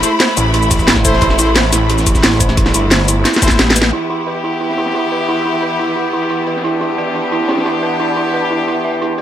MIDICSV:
0, 0, Header, 1, 7, 480
1, 0, Start_track
1, 0, Key_signature, 1, "minor"
1, 0, Tempo, 338983
1, 1725, Time_signature, 4, 2, 24, 8
1, 13051, End_track
2, 0, Start_track
2, 0, Title_t, "Brass ensemble"
2, 0, Program_c, 0, 61
2, 45, Note_on_c, 0, 64, 81
2, 45, Note_on_c, 0, 69, 76
2, 45, Note_on_c, 0, 72, 89
2, 148, Note_off_c, 0, 64, 0
2, 148, Note_off_c, 0, 69, 0
2, 148, Note_off_c, 0, 72, 0
2, 1484, Note_on_c, 0, 64, 98
2, 1484, Note_on_c, 0, 69, 89
2, 1485, Note_on_c, 0, 72, 108
2, 1935, Note_off_c, 0, 69, 0
2, 1936, Note_off_c, 0, 64, 0
2, 1936, Note_off_c, 0, 72, 0
2, 1964, Note_on_c, 0, 64, 87
2, 1964, Note_on_c, 0, 69, 83
2, 1964, Note_on_c, 0, 72, 96
2, 2130, Note_off_c, 0, 64, 0
2, 2130, Note_off_c, 0, 69, 0
2, 2130, Note_off_c, 0, 72, 0
2, 4844, Note_on_c, 0, 64, 94
2, 4844, Note_on_c, 0, 69, 83
2, 4844, Note_on_c, 0, 72, 105
2, 4946, Note_off_c, 0, 64, 0
2, 4946, Note_off_c, 0, 69, 0
2, 4946, Note_off_c, 0, 72, 0
2, 4965, Note_on_c, 0, 69, 68
2, 4966, Note_on_c, 0, 64, 76
2, 4966, Note_on_c, 0, 72, 83
2, 5069, Note_off_c, 0, 64, 0
2, 5069, Note_off_c, 0, 69, 0
2, 5069, Note_off_c, 0, 72, 0
2, 5564, Note_on_c, 0, 64, 75
2, 5564, Note_on_c, 0, 67, 91
2, 5565, Note_on_c, 0, 59, 83
2, 9375, Note_off_c, 0, 64, 0
2, 9375, Note_off_c, 0, 67, 0
2, 9376, Note_off_c, 0, 59, 0
2, 9405, Note_on_c, 0, 59, 84
2, 9406, Note_on_c, 0, 64, 75
2, 9406, Note_on_c, 0, 67, 90
2, 13051, Note_off_c, 0, 59, 0
2, 13051, Note_off_c, 0, 64, 0
2, 13051, Note_off_c, 0, 67, 0
2, 13051, End_track
3, 0, Start_track
3, 0, Title_t, "Synth bell"
3, 0, Program_c, 1, 98
3, 43, Note_on_c, 1, 64, 103
3, 272, Note_off_c, 1, 64, 0
3, 284, Note_on_c, 1, 72, 78
3, 376, Note_off_c, 1, 72, 0
3, 524, Note_on_c, 1, 64, 78
3, 616, Note_off_c, 1, 64, 0
3, 764, Note_on_c, 1, 64, 86
3, 918, Note_off_c, 1, 64, 0
3, 1004, Note_on_c, 1, 64, 104
3, 1227, Note_off_c, 1, 64, 0
3, 1244, Note_on_c, 1, 64, 102
3, 1472, Note_off_c, 1, 64, 0
3, 1485, Note_on_c, 1, 72, 79
3, 1638, Note_off_c, 1, 72, 0
3, 1725, Note_on_c, 1, 64, 102
3, 1878, Note_off_c, 1, 64, 0
3, 1964, Note_on_c, 1, 64, 106
3, 2192, Note_off_c, 1, 64, 0
3, 2204, Note_on_c, 1, 72, 78
3, 2296, Note_off_c, 1, 72, 0
3, 2443, Note_on_c, 1, 64, 77
3, 2536, Note_off_c, 1, 64, 0
3, 2684, Note_on_c, 1, 64, 85
3, 2837, Note_off_c, 1, 64, 0
3, 2924, Note_on_c, 1, 64, 109
3, 3147, Note_off_c, 1, 64, 0
3, 3164, Note_on_c, 1, 64, 105
3, 3392, Note_off_c, 1, 64, 0
3, 3403, Note_on_c, 1, 72, 79
3, 3557, Note_off_c, 1, 72, 0
3, 3644, Note_on_c, 1, 64, 105
3, 3798, Note_off_c, 1, 64, 0
3, 3884, Note_on_c, 1, 64, 106
3, 4112, Note_off_c, 1, 64, 0
3, 4124, Note_on_c, 1, 72, 80
3, 4216, Note_off_c, 1, 72, 0
3, 4364, Note_on_c, 1, 64, 77
3, 4456, Note_off_c, 1, 64, 0
3, 4605, Note_on_c, 1, 64, 86
3, 4758, Note_off_c, 1, 64, 0
3, 4845, Note_on_c, 1, 64, 82
3, 5072, Note_off_c, 1, 64, 0
3, 5084, Note_on_c, 1, 67, 79
3, 5238, Note_off_c, 1, 67, 0
3, 5324, Note_on_c, 1, 71, 79
3, 5478, Note_off_c, 1, 71, 0
3, 5564, Note_on_c, 1, 64, 96
3, 5718, Note_off_c, 1, 64, 0
3, 5803, Note_on_c, 1, 64, 100
3, 6032, Note_off_c, 1, 64, 0
3, 6043, Note_on_c, 1, 71, 74
3, 6136, Note_off_c, 1, 71, 0
3, 6284, Note_on_c, 1, 64, 72
3, 6376, Note_off_c, 1, 64, 0
3, 6524, Note_on_c, 1, 64, 77
3, 6677, Note_off_c, 1, 64, 0
3, 6764, Note_on_c, 1, 64, 95
3, 6987, Note_off_c, 1, 64, 0
3, 7004, Note_on_c, 1, 64, 98
3, 7232, Note_off_c, 1, 64, 0
3, 7245, Note_on_c, 1, 71, 69
3, 7398, Note_off_c, 1, 71, 0
3, 7485, Note_on_c, 1, 64, 98
3, 7638, Note_off_c, 1, 64, 0
3, 7725, Note_on_c, 1, 64, 97
3, 7953, Note_off_c, 1, 64, 0
3, 7966, Note_on_c, 1, 71, 73
3, 8057, Note_off_c, 1, 71, 0
3, 8205, Note_on_c, 1, 64, 71
3, 8296, Note_off_c, 1, 64, 0
3, 8444, Note_on_c, 1, 64, 78
3, 8598, Note_off_c, 1, 64, 0
3, 8684, Note_on_c, 1, 64, 100
3, 8908, Note_off_c, 1, 64, 0
3, 8925, Note_on_c, 1, 64, 99
3, 9152, Note_off_c, 1, 64, 0
3, 9165, Note_on_c, 1, 71, 70
3, 9318, Note_off_c, 1, 71, 0
3, 9405, Note_on_c, 1, 64, 97
3, 9558, Note_off_c, 1, 64, 0
3, 9644, Note_on_c, 1, 64, 102
3, 9872, Note_off_c, 1, 64, 0
3, 9885, Note_on_c, 1, 71, 71
3, 9977, Note_off_c, 1, 71, 0
3, 10126, Note_on_c, 1, 64, 71
3, 10217, Note_off_c, 1, 64, 0
3, 10365, Note_on_c, 1, 64, 80
3, 10518, Note_off_c, 1, 64, 0
3, 10604, Note_on_c, 1, 64, 100
3, 10827, Note_off_c, 1, 64, 0
3, 10844, Note_on_c, 1, 64, 96
3, 11072, Note_off_c, 1, 64, 0
3, 11085, Note_on_c, 1, 71, 72
3, 11238, Note_off_c, 1, 71, 0
3, 11325, Note_on_c, 1, 64, 98
3, 11478, Note_off_c, 1, 64, 0
3, 11564, Note_on_c, 1, 64, 100
3, 11792, Note_off_c, 1, 64, 0
3, 11805, Note_on_c, 1, 71, 74
3, 11897, Note_off_c, 1, 71, 0
3, 12044, Note_on_c, 1, 64, 72
3, 12136, Note_off_c, 1, 64, 0
3, 12285, Note_on_c, 1, 64, 79
3, 12438, Note_off_c, 1, 64, 0
3, 12524, Note_on_c, 1, 76, 74
3, 12752, Note_off_c, 1, 76, 0
3, 12764, Note_on_c, 1, 64, 98
3, 12918, Note_off_c, 1, 64, 0
3, 13005, Note_on_c, 1, 71, 72
3, 13051, Note_off_c, 1, 71, 0
3, 13051, End_track
4, 0, Start_track
4, 0, Title_t, "String section"
4, 0, Program_c, 2, 48
4, 0, Note_on_c, 2, 57, 85
4, 0, Note_on_c, 2, 64, 96
4, 0, Note_on_c, 2, 83, 94
4, 5507, Note_off_c, 2, 64, 0
4, 5508, Note_off_c, 2, 57, 0
4, 5508, Note_off_c, 2, 83, 0
4, 5564, Note_on_c, 2, 52, 76
4, 5564, Note_on_c, 2, 59, 71
4, 5564, Note_on_c, 2, 64, 86
4, 9366, Note_off_c, 2, 64, 0
4, 9404, Note_on_c, 2, 62, 88
4, 13051, Note_off_c, 2, 52, 0
4, 13051, Note_off_c, 2, 59, 0
4, 13051, Note_off_c, 2, 62, 0
4, 13051, End_track
5, 0, Start_track
5, 0, Title_t, "Detuned saw bass"
5, 0, Program_c, 3, 39
5, 525, Note_on_c, 3, 33, 101
5, 1705, Note_off_c, 3, 33, 0
5, 1724, Note_on_c, 3, 33, 102
5, 2425, Note_off_c, 3, 33, 0
5, 2444, Note_on_c, 3, 33, 102
5, 3625, Note_off_c, 3, 33, 0
5, 3644, Note_on_c, 3, 33, 104
5, 3865, Note_off_c, 3, 33, 0
5, 3884, Note_on_c, 3, 31, 96
5, 4585, Note_off_c, 3, 31, 0
5, 13051, End_track
6, 0, Start_track
6, 0, Title_t, "Wobble bass"
6, 0, Program_c, 4, 39
6, 4844, Note_on_c, 4, 33, 100
6, 5545, Note_off_c, 4, 33, 0
6, 13051, End_track
7, 0, Start_track
7, 0, Title_t, "Drums"
7, 44, Note_on_c, 9, 42, 93
7, 44, Note_on_c, 9, 69, 61
7, 48, Note_off_c, 9, 42, 0
7, 48, Note_on_c, 9, 42, 77
7, 186, Note_off_c, 9, 69, 0
7, 190, Note_off_c, 9, 42, 0
7, 282, Note_on_c, 9, 42, 89
7, 284, Note_off_c, 9, 42, 0
7, 284, Note_on_c, 9, 38, 118
7, 284, Note_on_c, 9, 42, 83
7, 285, Note_off_c, 9, 38, 0
7, 285, Note_on_c, 9, 38, 114
7, 425, Note_off_c, 9, 42, 0
7, 426, Note_off_c, 9, 38, 0
7, 524, Note_on_c, 9, 42, 95
7, 524, Note_on_c, 9, 69, 63
7, 526, Note_off_c, 9, 42, 0
7, 526, Note_on_c, 9, 42, 67
7, 665, Note_off_c, 9, 69, 0
7, 668, Note_off_c, 9, 42, 0
7, 764, Note_on_c, 9, 42, 80
7, 766, Note_off_c, 9, 42, 0
7, 766, Note_on_c, 9, 42, 92
7, 884, Note_on_c, 9, 69, 30
7, 907, Note_off_c, 9, 42, 0
7, 1004, Note_off_c, 9, 69, 0
7, 1004, Note_on_c, 9, 36, 105
7, 1004, Note_on_c, 9, 42, 97
7, 1004, Note_on_c, 9, 69, 65
7, 1009, Note_on_c, 9, 46, 79
7, 1123, Note_off_c, 9, 69, 0
7, 1123, Note_on_c, 9, 69, 29
7, 1124, Note_off_c, 9, 36, 0
7, 1124, Note_on_c, 9, 36, 61
7, 1125, Note_off_c, 9, 42, 0
7, 1125, Note_on_c, 9, 42, 46
7, 1151, Note_off_c, 9, 46, 0
7, 1235, Note_on_c, 9, 38, 114
7, 1243, Note_off_c, 9, 38, 0
7, 1243, Note_off_c, 9, 42, 0
7, 1243, Note_on_c, 9, 38, 120
7, 1243, Note_on_c, 9, 42, 81
7, 1249, Note_off_c, 9, 42, 0
7, 1249, Note_on_c, 9, 42, 91
7, 1265, Note_off_c, 9, 36, 0
7, 1265, Note_off_c, 9, 69, 0
7, 1364, Note_on_c, 9, 36, 61
7, 1364, Note_on_c, 9, 40, 45
7, 1384, Note_off_c, 9, 38, 0
7, 1390, Note_off_c, 9, 42, 0
7, 1483, Note_on_c, 9, 42, 97
7, 1483, Note_on_c, 9, 69, 63
7, 1484, Note_off_c, 9, 36, 0
7, 1484, Note_on_c, 9, 36, 104
7, 1505, Note_off_c, 9, 40, 0
7, 1605, Note_on_c, 9, 38, 49
7, 1625, Note_off_c, 9, 42, 0
7, 1625, Note_off_c, 9, 69, 0
7, 1626, Note_off_c, 9, 36, 0
7, 1711, Note_on_c, 9, 42, 83
7, 1723, Note_off_c, 9, 42, 0
7, 1723, Note_on_c, 9, 42, 82
7, 1724, Note_on_c, 9, 36, 116
7, 1746, Note_off_c, 9, 38, 0
7, 1844, Note_on_c, 9, 40, 36
7, 1865, Note_off_c, 9, 42, 0
7, 1866, Note_off_c, 9, 36, 0
7, 1963, Note_on_c, 9, 42, 69
7, 1964, Note_off_c, 9, 42, 0
7, 1964, Note_on_c, 9, 42, 99
7, 1964, Note_on_c, 9, 69, 65
7, 1985, Note_off_c, 9, 40, 0
7, 2105, Note_off_c, 9, 42, 0
7, 2105, Note_off_c, 9, 69, 0
7, 2202, Note_on_c, 9, 42, 85
7, 2204, Note_off_c, 9, 42, 0
7, 2204, Note_on_c, 9, 38, 117
7, 2204, Note_on_c, 9, 42, 85
7, 2211, Note_off_c, 9, 38, 0
7, 2211, Note_on_c, 9, 38, 118
7, 2345, Note_off_c, 9, 42, 0
7, 2352, Note_off_c, 9, 38, 0
7, 2443, Note_on_c, 9, 40, 50
7, 2443, Note_on_c, 9, 42, 96
7, 2443, Note_on_c, 9, 69, 63
7, 2446, Note_off_c, 9, 42, 0
7, 2446, Note_on_c, 9, 42, 63
7, 2585, Note_off_c, 9, 40, 0
7, 2585, Note_off_c, 9, 69, 0
7, 2587, Note_off_c, 9, 42, 0
7, 2684, Note_on_c, 9, 42, 81
7, 2688, Note_off_c, 9, 42, 0
7, 2688, Note_on_c, 9, 42, 86
7, 2805, Note_on_c, 9, 69, 29
7, 2811, Note_on_c, 9, 38, 46
7, 2829, Note_off_c, 9, 42, 0
7, 2924, Note_off_c, 9, 69, 0
7, 2924, Note_on_c, 9, 36, 99
7, 2924, Note_on_c, 9, 42, 99
7, 2924, Note_on_c, 9, 69, 65
7, 2935, Note_off_c, 9, 42, 0
7, 2935, Note_on_c, 9, 42, 66
7, 2953, Note_off_c, 9, 38, 0
7, 3039, Note_on_c, 9, 38, 54
7, 3044, Note_off_c, 9, 36, 0
7, 3044, Note_off_c, 9, 69, 0
7, 3044, Note_on_c, 9, 36, 61
7, 3044, Note_on_c, 9, 69, 29
7, 3076, Note_off_c, 9, 42, 0
7, 3163, Note_off_c, 9, 38, 0
7, 3163, Note_on_c, 9, 38, 112
7, 3164, Note_off_c, 9, 38, 0
7, 3164, Note_on_c, 9, 38, 115
7, 3164, Note_on_c, 9, 42, 83
7, 3166, Note_off_c, 9, 42, 0
7, 3166, Note_on_c, 9, 42, 86
7, 3186, Note_off_c, 9, 36, 0
7, 3186, Note_off_c, 9, 69, 0
7, 3293, Note_off_c, 9, 42, 0
7, 3293, Note_on_c, 9, 42, 47
7, 3306, Note_off_c, 9, 38, 0
7, 3393, Note_off_c, 9, 42, 0
7, 3393, Note_on_c, 9, 42, 68
7, 3404, Note_off_c, 9, 42, 0
7, 3404, Note_on_c, 9, 36, 103
7, 3404, Note_on_c, 9, 42, 99
7, 3404, Note_on_c, 9, 69, 64
7, 3524, Note_on_c, 9, 40, 35
7, 3525, Note_off_c, 9, 42, 0
7, 3525, Note_on_c, 9, 42, 46
7, 3546, Note_off_c, 9, 36, 0
7, 3546, Note_off_c, 9, 69, 0
7, 3642, Note_off_c, 9, 42, 0
7, 3642, Note_on_c, 9, 42, 87
7, 3644, Note_off_c, 9, 42, 0
7, 3644, Note_on_c, 9, 36, 117
7, 3644, Note_on_c, 9, 42, 89
7, 3666, Note_off_c, 9, 40, 0
7, 3764, Note_on_c, 9, 38, 36
7, 3764, Note_on_c, 9, 40, 36
7, 3786, Note_off_c, 9, 36, 0
7, 3786, Note_off_c, 9, 42, 0
7, 3884, Note_on_c, 9, 42, 100
7, 3884, Note_on_c, 9, 69, 63
7, 3892, Note_off_c, 9, 42, 0
7, 3892, Note_on_c, 9, 42, 76
7, 3906, Note_off_c, 9, 38, 0
7, 3906, Note_off_c, 9, 40, 0
7, 4026, Note_off_c, 9, 69, 0
7, 4034, Note_off_c, 9, 42, 0
7, 4117, Note_on_c, 9, 42, 93
7, 4124, Note_on_c, 9, 38, 105
7, 4125, Note_off_c, 9, 38, 0
7, 4125, Note_off_c, 9, 42, 0
7, 4125, Note_on_c, 9, 38, 120
7, 4125, Note_on_c, 9, 42, 86
7, 4266, Note_off_c, 9, 38, 0
7, 4266, Note_off_c, 9, 42, 0
7, 4365, Note_on_c, 9, 42, 102
7, 4365, Note_on_c, 9, 69, 65
7, 4367, Note_off_c, 9, 42, 0
7, 4367, Note_on_c, 9, 42, 65
7, 4506, Note_off_c, 9, 69, 0
7, 4509, Note_off_c, 9, 42, 0
7, 4600, Note_on_c, 9, 38, 104
7, 4603, Note_on_c, 9, 42, 86
7, 4604, Note_off_c, 9, 38, 0
7, 4604, Note_off_c, 9, 42, 0
7, 4604, Note_on_c, 9, 38, 70
7, 4604, Note_on_c, 9, 42, 85
7, 4724, Note_on_c, 9, 69, 29
7, 4746, Note_off_c, 9, 38, 0
7, 4746, Note_off_c, 9, 42, 0
7, 4765, Note_on_c, 9, 38, 75
7, 4844, Note_off_c, 9, 69, 0
7, 4844, Note_on_c, 9, 36, 102
7, 4844, Note_on_c, 9, 42, 101
7, 4844, Note_on_c, 9, 69, 62
7, 4847, Note_on_c, 9, 46, 76
7, 4906, Note_off_c, 9, 38, 0
7, 4924, Note_on_c, 9, 38, 85
7, 4964, Note_off_c, 9, 36, 0
7, 4964, Note_on_c, 9, 36, 61
7, 4965, Note_off_c, 9, 69, 0
7, 4965, Note_on_c, 9, 69, 29
7, 4967, Note_off_c, 9, 42, 0
7, 4967, Note_on_c, 9, 42, 47
7, 4989, Note_off_c, 9, 46, 0
7, 5066, Note_off_c, 9, 38, 0
7, 5083, Note_on_c, 9, 38, 109
7, 5084, Note_off_c, 9, 38, 0
7, 5084, Note_off_c, 9, 42, 0
7, 5084, Note_on_c, 9, 38, 92
7, 5084, Note_on_c, 9, 42, 86
7, 5089, Note_off_c, 9, 42, 0
7, 5089, Note_on_c, 9, 42, 84
7, 5106, Note_off_c, 9, 36, 0
7, 5106, Note_off_c, 9, 69, 0
7, 5226, Note_off_c, 9, 38, 0
7, 5231, Note_off_c, 9, 42, 0
7, 5244, Note_on_c, 9, 38, 101
7, 5321, Note_on_c, 9, 42, 71
7, 5324, Note_off_c, 9, 42, 0
7, 5324, Note_on_c, 9, 42, 99
7, 5324, Note_on_c, 9, 69, 63
7, 5385, Note_off_c, 9, 38, 0
7, 5404, Note_on_c, 9, 38, 105
7, 5448, Note_off_c, 9, 38, 0
7, 5448, Note_on_c, 9, 38, 49
7, 5466, Note_off_c, 9, 42, 0
7, 5466, Note_off_c, 9, 69, 0
7, 5562, Note_on_c, 9, 42, 83
7, 5590, Note_off_c, 9, 38, 0
7, 5704, Note_off_c, 9, 42, 0
7, 5807, Note_on_c, 9, 42, 62
7, 5948, Note_off_c, 9, 42, 0
7, 6056, Note_on_c, 9, 42, 83
7, 6197, Note_off_c, 9, 42, 0
7, 6287, Note_on_c, 9, 42, 66
7, 6428, Note_off_c, 9, 42, 0
7, 6515, Note_on_c, 9, 42, 76
7, 6644, Note_on_c, 9, 38, 41
7, 6657, Note_off_c, 9, 42, 0
7, 6759, Note_on_c, 9, 42, 61
7, 6786, Note_off_c, 9, 38, 0
7, 6879, Note_on_c, 9, 38, 50
7, 6900, Note_off_c, 9, 42, 0
7, 7005, Note_on_c, 9, 42, 79
7, 7020, Note_off_c, 9, 38, 0
7, 7129, Note_off_c, 9, 42, 0
7, 7129, Note_on_c, 9, 42, 42
7, 7243, Note_off_c, 9, 42, 0
7, 7243, Note_on_c, 9, 42, 65
7, 7366, Note_off_c, 9, 42, 0
7, 7366, Note_on_c, 9, 42, 38
7, 7481, Note_off_c, 9, 42, 0
7, 7481, Note_on_c, 9, 42, 86
7, 7622, Note_off_c, 9, 42, 0
7, 7733, Note_on_c, 9, 42, 68
7, 7875, Note_off_c, 9, 42, 0
7, 7957, Note_on_c, 9, 42, 85
7, 8098, Note_off_c, 9, 42, 0
7, 8192, Note_on_c, 9, 42, 67
7, 8334, Note_off_c, 9, 42, 0
7, 8448, Note_on_c, 9, 42, 89
7, 8590, Note_off_c, 9, 42, 0
7, 8695, Note_on_c, 9, 46, 80
7, 8807, Note_on_c, 9, 42, 43
7, 8837, Note_off_c, 9, 46, 0
7, 8914, Note_off_c, 9, 42, 0
7, 8914, Note_on_c, 9, 42, 82
7, 9056, Note_off_c, 9, 42, 0
7, 9152, Note_on_c, 9, 42, 68
7, 9293, Note_off_c, 9, 42, 0
7, 9293, Note_on_c, 9, 38, 48
7, 9410, Note_on_c, 9, 42, 85
7, 9435, Note_off_c, 9, 38, 0
7, 9551, Note_off_c, 9, 42, 0
7, 9640, Note_on_c, 9, 42, 69
7, 9781, Note_off_c, 9, 42, 0
7, 9889, Note_on_c, 9, 42, 81
7, 10031, Note_off_c, 9, 42, 0
7, 10126, Note_on_c, 9, 42, 61
7, 10267, Note_off_c, 9, 42, 0
7, 10360, Note_on_c, 9, 42, 80
7, 10485, Note_on_c, 9, 38, 42
7, 10502, Note_off_c, 9, 42, 0
7, 10599, Note_off_c, 9, 38, 0
7, 10599, Note_on_c, 9, 38, 109
7, 10599, Note_on_c, 9, 42, 80
7, 10730, Note_off_c, 9, 38, 0
7, 10730, Note_off_c, 9, 42, 0
7, 10730, Note_on_c, 9, 38, 112
7, 10730, Note_on_c, 9, 42, 74
7, 10841, Note_off_c, 9, 42, 0
7, 10841, Note_on_c, 9, 42, 84
7, 10872, Note_off_c, 9, 38, 0
7, 10970, Note_off_c, 9, 42, 0
7, 10970, Note_on_c, 9, 42, 44
7, 11088, Note_off_c, 9, 42, 0
7, 11088, Note_on_c, 9, 42, 63
7, 11208, Note_off_c, 9, 42, 0
7, 11208, Note_on_c, 9, 42, 40
7, 11320, Note_off_c, 9, 42, 0
7, 11320, Note_on_c, 9, 42, 74
7, 11461, Note_off_c, 9, 42, 0
7, 11561, Note_on_c, 9, 42, 67
7, 11703, Note_off_c, 9, 42, 0
7, 11809, Note_on_c, 9, 42, 81
7, 11950, Note_off_c, 9, 42, 0
7, 12033, Note_on_c, 9, 42, 61
7, 12174, Note_off_c, 9, 42, 0
7, 12292, Note_on_c, 9, 42, 82
7, 12434, Note_off_c, 9, 42, 0
7, 12516, Note_on_c, 9, 46, 77
7, 12646, Note_on_c, 9, 42, 42
7, 12658, Note_off_c, 9, 46, 0
7, 12769, Note_off_c, 9, 42, 0
7, 12769, Note_on_c, 9, 42, 87
7, 12911, Note_off_c, 9, 42, 0
7, 13000, Note_on_c, 9, 42, 61
7, 13051, Note_off_c, 9, 42, 0
7, 13051, End_track
0, 0, End_of_file